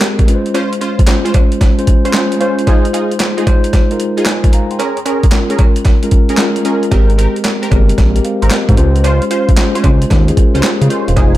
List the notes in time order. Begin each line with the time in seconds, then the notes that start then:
Already playing: G#3 C4 G4 G#4 A#4
0.01 snare, clap, closed hi-hat, cowbell
0.19 kick, closed hi-hat
0.28 G#3 C#4 F4 B4, closed hi-hat
0.35 C5
0.46 closed hi-hat
0.54 C#4 F4 C5, closed hi-hat, cowbell
0.73 closed hi-hat
0.81 C#4 F4 C5, closed hi-hat
0.99 kick, closed hi-hat
1.07 G#3 C#4 F4 C5, snare, clap, closed hi-hat, cowbell
1.25 C#4 F4 C5, closed hi-hat
1.34 kick, closed hi-hat, cowbell
1.52 closed hi-hat
1.61 kick, snare, closed hi-hat, cowbell
1.78 G#3 C#4 F4 C5, closed hi-hat
1.87 kick, closed hi-hat
2.05 C#4 F4 C5, closed hi-hat
2.13 G#3 C#4 F4 C5, snare, clap, closed hi-hat, cowbell
2.32 closed hi-hat
2.40 G#3 C#4 F4 C5, closed hi-hat
2.59 closed hi-hat
2.67 G#3 D#4 F4 G#4 C5, kick, closed hi-hat, cowbell
2.85 closed hi-hat
2.93 D#4 F4 G#4, closed hi-hat
3.11 closed hi-hat
3.20 snare, clap, closed hi-hat, cowbell
3.37 D#4 F4 G#4, closed hi-hat
3.47 G#3 D#4 F4 C5, kick, closed hi-hat, cowbell
3.64 closed hi-hat
3.73 kick, snare, closed hi-hat, cowbell
3.91 G#3 D#4 F4 A#4, closed hi-hat
4.00 closed hi-hat
4.17 D#4 F4 G#4, closed hi-hat
4.25 D#5 G#5, snare, clap, closed hi-hat, cowbell
4.44 kick, closed hi-hat
4.53 F5 A#5, closed hi-hat
4.71 G5 C6, closed hi-hat
4.79 C#4 G#4 A#4, closed hi-hat, cowbell
4.97 closed hi-hat
5.06 C#4 G#4 A#4, closed hi-hat, cowbell
5.23 kick, closed hi-hat
5.31 G#3 C#4 F4 A#4, snare, clap, closed hi-hat, cowbell
5.50 C#4 G#4 A#4, closed hi-hat
5.59 kick, closed hi-hat, cowbell
5.76 closed hi-hat
5.85 kick, snare, closed hi-hat, cowbell
6.03 G#3 C#4 F4 A#4, closed hi-hat
6.11 kick, closed hi-hat
6.29 C#4 G#4 A#4, closed hi-hat
6.37 G#3 C#4 F4 A#4, snare, clap, closed hi-hat, cowbell
6.56 closed hi-hat
6.65 G#3 C#4 F4 G#4 A#4, closed hi-hat
6.83 closed hi-hat
6.91 G#1 G#3 C4 G4 A#4, kick, closed hi-hat, cowbell
7.10 closed hi-hat
7.18 C4 G4 A#4, closed hi-hat
7.36 closed hi-hat
7.44 snare, clap, closed hi-hat, cowbell
7.62 C4 G4 A#4, closed hi-hat
7.70 G1 G#3 C4 G4 A#4, kick, closed hi-hat, cowbell
7.89 closed hi-hat
7.98 A#1, kick, snare, closed hi-hat, cowbell
8.15 G#3 C4 G4 A#4, closed hi-hat
8.24 C5 F5, closed hi-hat
8.42 G#1 C4 G4 A#4, closed hi-hat
8.50 A#4 D#5, snare, clap, closed hi-hat, cowbell
8.69 G#2 G4 C5, kick, closed hi-hat
8.77 C#2 G#3 C#4 F4 C5, closed hi-hat
8.96 closed hi-hat
9.04 C#4 F4 C5, closed hi-hat, cowbell
9.22 closed hi-hat
9.31 C#4 F4 C5, closed hi-hat
9.49 kick, closed hi-hat
9.57 G#3 C#4 F4 C5, snare, clap, closed hi-hat, cowbell
9.75 C#4 F4 C5, closed hi-hat
9.84 C#2, kick, closed hi-hat, cowbell
10.02 closed hi-hat
10.10 D#2, kick, snare, closed hi-hat, cowbell
10.28 G#3 C#4 F4 G#4, closed hi-hat
10.37 F4 A#4, kick, closed hi-hat
10.54 C#2 C#4 F4 G4 C5, closed hi-hat
10.63 snare, clap, closed hi-hat, cowbell
10.81 C#3 G#4 C#5, closed hi-hat
10.90 C#4 F4 A#4 C5 D#5, closed hi-hat
11.08 E1 C5 F5, closed hi-hat
11.16 F1 G#3 D#4 F4 G#4 C5, kick, closed hi-hat, cowbell